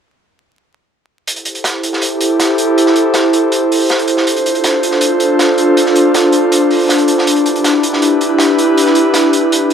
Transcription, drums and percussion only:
1.28 closed hi-hat medium
1.36 closed hi-hat soft
1.45 closed hi-hat medium
1.55 closed hi-hat soft
1.64 snare loud
1.64 closed hi-hat medium
1.83 closed hi-hat medium
1.93 snare soft
2.02 closed hi-hat medium
2.21 closed hi-hat medium
2.40 snare loud
2.40 closed hi-hat medium
2.58 closed hi-hat medium
2.78 closed hi-hat medium
2.86 snare soft
2.96 closed hi-hat medium
3.14 snare loud
3.14 closed hi-hat medium
3.33 closed hi-hat medium
3.52 closed hi-hat medium
3.72 open hi-hat medium
3.89 snare medium
3.89 closed hi-hat medium
3.99 closed hi-hat soft
4.08 closed hi-hat medium
4.17 snare soft
4.27 closed hi-hat medium
4.36 closed hi-hat soft
4.46 closed hi-hat medium
4.55 closed hi-hat soft
4.64 snare loud
4.64 closed hi-hat medium
4.83 closed hi-hat medium
4.91 snare soft
5.01 closed hi-hat medium
5.20 closed hi-hat medium
5.39 snare loud
5.39 closed hi-hat medium
5.58 closed hi-hat medium
5.77 closed hi-hat medium
5.86 snare soft
5.96 closed hi-hat medium
6.14 snare loud
6.14 closed hi-hat medium
6.32 closed hi-hat medium
6.52 closed hi-hat medium
6.71 open hi-hat medium
6.89 snare medium
6.89 closed hi-hat medium
6.98 closed hi-hat soft
7.08 closed hi-hat medium
7.18 snare soft
7.27 closed hi-hat medium
7.36 closed hi-hat soft
7.46 closed hi-hat medium
7.56 closed hi-hat soft
7.64 snare loud
7.64 closed hi-hat medium
7.83 closed hi-hat medium
7.93 snare soft
8.02 closed hi-hat medium
8.21 closed hi-hat medium
8.39 snare medium
8.39 closed hi-hat medium
8.59 closed hi-hat medium
8.78 closed hi-hat medium
8.86 snare soft
8.95 closed hi-hat medium
9.14 snare loud
9.14 closed hi-hat medium
9.33 closed hi-hat medium
9.52 closed hi-hat medium
9.70 open hi-hat medium

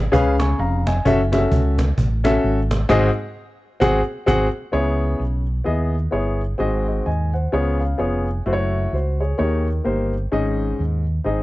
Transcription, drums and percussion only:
0.13 cajon bass loud
0.40 cajon slap loud
0.60 cajon slap soft
0.87 cajon slap loud
1.06 cajon bass loud
1.33 cajon slap loud
1.52 cajon bass medium
1.78 cajon bass medium
1.78 cajon slap loud
1.98 cajon bass loud
2.25 cajon slap loud
2.44 cajon slap soft
2.71 cajon slap loud
2.90 cajon bass loud
2.90 cajon slap loud
3.82 cajon bass loud
3.82 cajon slap loud
4.28 cajon bass loud
4.28 cajon slap loud

